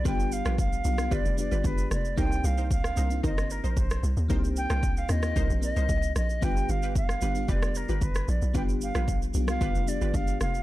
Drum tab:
SH |xxxxxxxxxxxxxxxx|xxxxxxxxxxxxxxxx|xxxxxxxxxxxxxxxx|xxxxxxxxxxxxxxxx|
SD |---r---r------r-|-----r---r---r--|---r--rr------r-|-----r---r---r--|
BD |o---o---o---o---|o---o---o---o---|o---o---o---o---|o---o---o---o---|

SH |xxxxxxxxxxxxxxxx|
SD |---r---r------r-|
BD |o---o---o---o---|